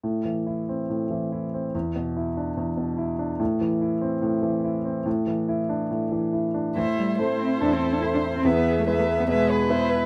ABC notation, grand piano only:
X:1
M:4/4
L:1/8
Q:1/4=144
K:Am
V:1 name="Grand piano"
A,, E, E C A,, E, E C | E,, B,, E D E,, B,, E D | A,, E, E C A,, E, E C | A,, E, E D A,, E, E D |
A,,2 [CEA]2 E,,2 [CEA]2 | E,,2 [B,EB]2 B,,2 [B,EB]2 |]